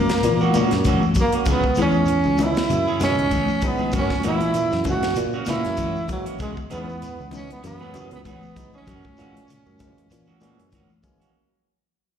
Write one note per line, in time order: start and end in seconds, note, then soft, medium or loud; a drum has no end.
0.00 0.21 C#3 medium
0.00 0.88 A#3 medium
0.09 snare medium
0.09 closed hi-hat soft
0.09 shekere soft
0.23 0.40 A#2 medium
0.23 0.52 E3 medium
0.23 muted clean electric guitar stroke soft
0.23 closed hi-hat medium
0.23 shekere medium
0.41 0.54 E3 medium
0.41 0.54 A#3 medium
0.41 0.55 F#4 medium
0.41 high conga medium
0.41 shekere soft
0.54 0.71 A#2 medium
0.54 0.82 C#3 medium
0.54 0.72 E3 medium
0.54 0.72 A#3 medium
0.54 0.71 C#4 medium
0.54 0.71 F#4 medium
0.54 closed hi-hat soft
0.54 high conga medium
0.54 shekere medium
0.71 1.01 F#2 medium
0.71 muted clean electric guitar stroke soft
0.71 snare soft
0.71 closed hi-hat soft
0.71 shekere soft
0.84 1.03 E3 medium
0.84 1.13 E3 medium
0.84 1.03 A#3 medium
0.84 1.03 C#4 medium
0.84 1.02 F#4 medium
0.84 kick medium
0.84 closed hi-hat medium
0.84 high conga medium
0.84 shekere medium
1.02 muted clean electric guitar stroke soft
1.02 shekere soft
1.14 1.44 F#3 medium
1.14 muted clean electric guitar stroke soft
1.14 kick medium
1.14 closed hi-hat soft
1.14 low conga medium
1.14 shekere medium
1.20 1.33 A#3 medium
1.20 1.34 A#3 medium
1.32 1.47 A#3 soft
1.32 1.47 C#4 soft
1.32 1.47 F#4 soft
1.32 closed hi-hat soft
1.32 shekere soft
1.45 1.63 C#2 medium
1.45 1.65 E3 medium
1.45 1.74 G#3 medium
1.45 1.64 B3 medium
1.45 1.63 C#4 medium
1.45 1.63 G#4 medium
1.45 kick medium
1.45 closed hi-hat medium
1.45 low conga medium
1.45 shekere medium
1.51 1.78 B3 medium
1.62 muted clean electric guitar stroke soft
1.62 kick medium
1.62 shekere soft
1.75 2.23 E2 medium
1.75 1.95 E3 medium
1.75 2.05 E3 medium
1.75 2.05 G#3 medium
1.75 1.95 B3 medium
1.75 2.05 B3 medium
1.75 1.94 C#4 medium
1.75 2.05 D#4 medium
1.75 1.95 G#4 medium
1.75 closed hi-hat soft
1.75 high conga medium
1.75 shekere medium
1.81 2.44 C#4 medium
1.81 2.46 C#4 loud
1.92 shekere soft
1.96 muted clean electric guitar stroke soft
2.05 2.36 E3 medium
2.05 closed hi-hat medium
2.05 shekere medium
2.23 2.55 C#2 medium
2.23 muted clean electric guitar stroke soft
2.23 shekere soft
2.38 2.66 C#3 medium
2.38 2.66 E3 medium
2.38 2.67 G#3 medium
2.38 2.67 B3 medium
2.38 2.67 D#4 medium
2.38 muted clean electric guitar stroke soft
2.38 closed hi-hat soft
2.38 high conga medium
2.38 low conga medium
2.38 shekere medium
2.43 3.03 E4 medium
2.55 snare medium
2.55 closed hi-hat soft
2.55 shekere soft
2.69 2.86 F#2 medium
2.69 2.97 C#3 medium
2.69 muted clean electric guitar stroke soft
2.69 closed hi-hat medium
2.69 shekere medium
2.87 2.99 E3 medium
2.87 3.00 C#4 medium
2.87 3.00 G#4 medium
2.87 muted clean electric guitar stroke medium
2.87 shekere soft
2.99 3.17 F#2 medium
2.99 3.28 B2 medium
2.99 3.28 E3 medium
2.99 3.18 E3 medium
2.99 3.27 G#3 medium
2.99 3.28 B3 medium
2.99 3.17 C#4 medium
2.99 3.28 D#4 medium
2.99 3.17 G#4 medium
2.99 snare soft
2.99 closed hi-hat medium
2.99 high conga medium
2.99 shekere medium
3.03 3.68 C#4 loud
3.03 3.69 C#4 medium
3.18 3.47 C#2 medium
3.18 muted clean electric guitar stroke soft
3.18 closed hi-hat soft
3.18 shekere soft
3.30 3.48 E3 medium
3.30 3.59 E3 medium
3.30 3.48 B3 medium
3.30 3.47 C#4 medium
3.30 3.47 G#4 medium
3.30 kick medium
3.30 closed hi-hat medium
3.30 high conga medium
3.30 shekere medium
3.48 muted clean electric guitar stroke soft
3.48 shekere soft
3.61 3.90 E3 medium
3.61 3.90 F#3 medium
3.61 3.90 G#3 medium
3.61 3.90 B3 medium
3.61 3.90 D#4 medium
3.61 muted clean electric guitar stroke soft
3.61 kick medium
3.61 closed hi-hat soft
3.61 low conga medium
3.61 shekere medium
3.66 3.95 B3 medium
3.66 3.96 B3 medium
3.78 3.93 B3 soft
3.78 3.91 C#4 soft
3.78 3.93 G#4 soft
3.78 high conga medium
3.78 shekere soft
3.92 4.10 F#2 medium
3.92 4.21 F#3 medium
3.92 4.10 A#3 medium
3.92 4.10 C#4 medium
3.92 4.10 F#4 medium
3.92 muted clean electric guitar stroke medium
3.92 kick medium
3.92 closed hi-hat medium
3.92 low conga medium
3.92 shekere medium
3.98 4.24 C#4 medium
3.98 4.25 C#4 medium
4.10 muted clean electric guitar stroke soft
4.10 kick medium
4.10 snare soft
4.10 high conga medium
4.10 shekere soft
4.23 4.70 A#2 medium
4.23 4.41 E3 medium
4.23 4.52 E3 medium
4.23 4.52 G#3 medium
4.23 4.41 A#3 medium
4.23 4.52 A#3 medium
4.23 4.40 C#4 medium
4.23 4.52 C#4 medium
4.23 4.39 F#4 medium
4.23 closed hi-hat medium
4.23 high conga medium
4.23 shekere medium
4.27 4.84 E4 loud
4.27 4.84 E4 medium
4.41 muted clean electric guitar stroke soft
4.41 closed hi-hat soft
4.41 shekere soft
4.54 4.83 E3 medium
4.54 closed hi-hat medium
4.54 shekere medium
4.71 5.02 F#2 medium
4.71 muted clean electric guitar stroke soft
4.71 snare soft
4.71 shekere soft
4.84 5.14 C#3 medium
4.84 5.13 E3 medium
4.84 5.13 G#3 medium
4.84 5.13 A#3 medium
4.84 5.14 C#4 medium
4.84 muted clean electric guitar stroke soft
4.84 kick medium
4.84 closed hi-hat soft
4.84 high conga medium
4.84 low conga medium
4.84 shekere medium
4.89 5.20 F#4 medium
5.02 snare medium
5.02 closed hi-hat soft
5.02 shekere soft
5.15 5.33 A#2 medium
5.15 muted clean electric guitar stroke soft
5.15 closed hi-hat medium
5.15 shekere medium
5.33 5.47 E3 medium
5.33 5.47 A#3 medium
5.33 5.48 C#4 medium
5.33 5.48 F#4 medium
5.33 shekere soft
5.45 5.64 A#2 medium
5.45 5.76 C#3 medium
5.45 5.75 E3 medium
5.45 5.65 E3 medium
5.45 5.75 G#3 medium
5.45 5.75 A#3 medium
5.45 5.65 A#3 medium
5.45 5.75 C#4 medium
5.45 5.66 C#4 soft
5.45 5.64 F#4 medium
5.45 snare soft
5.45 closed hi-hat soft
5.45 high conga medium
5.45 shekere medium
5.50 6.07 E4 loud
5.50 6.08 E4 medium
5.63 5.94 F#2 medium
5.63 muted clean electric guitar stroke soft
5.63 snare soft
5.63 closed hi-hat soft
5.63 shekere soft
5.77 6.06 E3 medium
5.77 5.94 A#3 medium
5.77 5.94 C#4 medium
5.77 5.96 F#4 medium
5.77 muted clean electric guitar stroke medium
5.77 kick medium
5.77 closed hi-hat medium
5.77 high conga medium
5.77 shekere medium
5.95 muted clean electric guitar stroke soft
5.95 shekere soft
6.08 6.36 E3 medium
6.08 6.37 F#3 medium
6.08 6.36 G#3 medium
6.08 6.36 A#3 medium
6.08 6.37 E4 medium
6.08 muted clean electric guitar stroke soft
6.08 kick medium
6.08 closed hi-hat soft
6.08 low conga medium
6.08 shekere medium
6.12 6.25 F#3 medium
6.12 6.26 F#3 medium
6.26 6.39 A#3 soft
6.26 6.38 C#4 soft
6.26 6.39 F#4 soft
6.26 closed hi-hat soft
6.26 shekere soft
6.39 6.56 C#2 medium
6.39 6.57 E3 medium
6.39 6.67 G#3 medium
6.39 6.55 G#3 medium
6.39 6.56 B3 medium
6.39 6.56 G#4 medium
6.39 muted clean electric guitar stroke medium
6.39 kick medium
6.39 closed hi-hat medium
6.39 low conga medium
6.39 shekere medium
6.43 6.57 G#3 medium
6.57 muted clean electric guitar stroke soft
6.57 kick medium
6.57 shekere soft
6.70 7.16 E2 medium
6.70 6.98 E3 medium
6.70 6.99 E3 medium
6.70 6.98 G#3 medium
6.70 6.86 B3 medium
6.70 6.98 B3 medium
6.70 7.30 B3 medium
6.70 6.87 C#4 medium
6.70 6.98 D#4 medium
6.70 6.86 G#4 medium
6.70 closed hi-hat soft
6.70 high conga medium
6.70 shekere medium
6.87 muted clean electric guitar stroke soft
6.87 shekere soft
7.02 7.30 E3 medium
7.02 closed hi-hat medium
7.02 shekere medium
7.19 7.48 C#2 medium
7.19 muted clean electric guitar stroke soft
7.19 shekere soft
7.31 7.60 C#3 medium
7.31 7.59 E3 medium
7.31 7.60 G#3 medium
7.31 7.60 B3 medium
7.31 7.50 C#4 medium
7.31 7.60 D#4 medium
7.31 muted clean electric guitar stroke soft
7.31 closed hi-hat soft
7.31 high conga medium
7.31 low conga medium
7.31 shekere medium
7.35 7.50 C#4 medium
7.50 7.64 B3 medium
7.50 closed hi-hat soft
7.50 shekere soft
7.62 7.80 F#2 medium
7.62 7.91 E3 medium
7.62 8.09 B3 medium
7.62 8.10 B3 medium
7.62 muted clean electric guitar stroke soft
7.62 closed hi-hat medium
7.62 shekere medium
7.80 7.93 E3 soft
7.80 7.93 B3 medium
7.80 7.94 C#4 medium
7.80 7.94 G#4 medium
7.80 high conga medium
7.80 shekere soft
7.94 8.11 F#2 medium
7.94 8.22 C#3 medium
7.94 8.21 E3 medium
7.94 8.11 E3 soft
7.94 8.22 G#3 medium
7.94 8.22 B3 medium
7.94 8.12 C#4 medium
7.94 8.22 F#4 medium
7.94 8.11 G#4 medium
7.94 muted clean electric guitar stroke medium
7.94 closed hi-hat soft
7.94 high conga medium
7.94 shekere medium
8.11 8.41 C#2 medium
8.11 8.19 B3 medium
8.11 8.20 B3 medium
8.11 muted clean electric guitar stroke soft
8.11 closed hi-hat soft
8.11 shekere soft
8.25 8.43 E3 medium
8.25 8.53 E3 medium
8.25 8.43 B3 medium
8.25 8.71 B3 medium
8.25 8.42 C#4 medium
8.25 8.42 G#4 medium
8.25 kick medium
8.25 closed hi-hat soft
8.25 high conga medium
8.25 shekere medium
8.30 8.73 B3 medium
8.42 muted clean electric guitar stroke soft
8.42 shekere soft
8.55 8.83 E3 medium
8.55 8.84 F#3 medium
8.55 8.83 G#3 medium
8.55 8.83 B3 medium
8.55 8.84 D#4 medium
8.55 muted clean electric guitar stroke soft
8.55 kick medium
8.55 closed hi-hat soft
8.55 low conga medium
8.55 shekere medium
8.73 10.69 C#4 medium
8.73 8.87 C#4 soft
8.73 8.88 G#4 soft
8.73 high conga medium
8.73 shekere soft
8.77 10.70 C#4 medium
8.86 9.03 F#2 medium
8.86 9.05 E3 medium
8.86 9.14 F#3 medium
8.86 9.04 A#3 medium
8.86 9.04 C#4 medium
8.86 9.04 F#4 medium
8.86 kick medium
8.86 closed hi-hat medium
8.86 low conga medium
8.86 shekere medium
9.04 muted clean electric guitar stroke soft
9.04 kick medium
9.04 high conga medium
9.04 shekere soft
9.17 9.63 A#2 medium
9.17 9.45 E3 medium
9.17 9.36 E3 medium
9.17 9.45 G#3 medium
9.17 9.45 A#3 medium
9.17 9.35 A#3 medium
9.17 9.46 C#4 medium
9.17 9.35 C#4 medium
9.17 9.35 F#4 medium
9.17 closed hi-hat soft
9.17 high conga medium
9.17 shekere medium
9.34 muted clean electric guitar stroke soft
9.34 closed hi-hat medium
9.34 shekere soft
9.48 9.76 C#3 medium
9.48 closed hi-hat medium
9.48 shekere medium
9.66 9.95 F#2 medium
9.66 muted clean electric guitar stroke soft
9.66 high conga medium
9.66 shekere soft
9.79 10.07 C#3 medium
9.79 10.07 E3 medium
9.79 10.07 G#3 medium
9.79 10.07 A#3 medium
9.79 10.07 C#4 medium
9.79 muted clean electric guitar stroke soft
9.79 kick medium
9.79 closed hi-hat soft
9.79 high conga medium
9.79 low conga medium
9.79 shekere medium
9.97 closed hi-hat soft
9.97 shekere soft
10.10 10.27 A#2 medium
10.10 10.38 E3 medium
10.10 muted clean electric guitar stroke soft
10.10 closed hi-hat medium
10.10 shekere medium
10.27 10.40 E3 medium
10.27 10.41 A#3 medium
10.27 10.41 C#4 medium
10.27 10.41 F#4 medium
10.27 high conga medium
10.27 shekere soft
10.41 10.58 A#2 medium
10.41 10.68 E3 medium
10.41 10.59 E3 medium
10.41 10.69 G#3 medium
10.41 10.69 A#3 medium
10.41 10.58 A#3 medium
10.41 10.58 C#4 medium
10.41 10.69 C#4 medium
10.41 10.58 F#4 medium
10.41 closed hi-hat medium
10.41 high conga medium
10.41 shekere medium
10.59 10.88 F#2 medium
10.59 muted clean electric guitar stroke soft
10.59 closed hi-hat soft
10.59 shekere soft
10.71 10.99 E3 medium
10.71 10.90 E3 medium
10.71 10.89 A#3 medium
10.71 10.89 C#4 medium
10.71 10.89 F#4 medium
10.71 kick medium
10.71 closed hi-hat medium
10.71 high conga medium
10.71 shekere medium
10.90 muted clean electric guitar stroke soft
10.90 shekere soft
11.03 11.30 E3 medium
11.03 11.30 F#3 medium
11.03 11.30 G#3 medium
11.03 11.31 A#3 medium
11.03 11.31 C#4 medium
11.03 muted clean electric guitar stroke soft
11.03 kick medium
11.03 closed hi-hat soft
11.03 low conga medium
11.03 shekere medium
11.20 11.35 A#3 soft
11.20 11.34 C#4 soft
11.20 11.34 F#4 soft
11.20 closed hi-hat soft
11.20 shekere soft